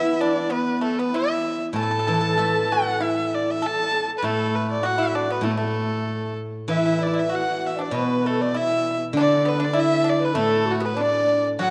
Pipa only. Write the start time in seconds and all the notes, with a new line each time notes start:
Already playing: E4
0.21 D4
0.50 B3
0.81 A3
0.99 B3
1.14 E4
1.76 A4
1.83 A4
1.91 A4
1.99 A4
2.07 A4
2.14 A4
2.21 A4
2.38 A4
2.72 F#4
3.00 E4
3.37 D4
3.62 A4
4.24 A3
4.83 F#4
4.98 E4
5.15 D4
5.30 B3
5.43 A3
5.57 A3
6.69 E4
6.77 E4
6.86 E4
6.92 E4
6.99 E4
7.07 E4
7.14 E4
7.29 F#4
7.79 D4
7.95 B3
8.26 A3
8.54 E4
9.17 D4
9.45 B3
9.60 D4
9.73 E4
10.04 D4
10.35 A3
10.80 B3
10.97 D4
11.59 F#4